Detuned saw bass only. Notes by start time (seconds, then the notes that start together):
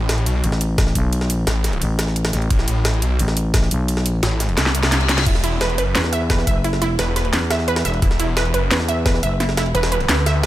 Already playing: A1
0.26 B1
1.47 A1
2.50 A1
3.02 B1
4.23 A1
4.57 C2
5.26 E1
5.78 F#1
6.99 E1
8.02 E1
8.54 F#1
9.75 E1
10.09 D2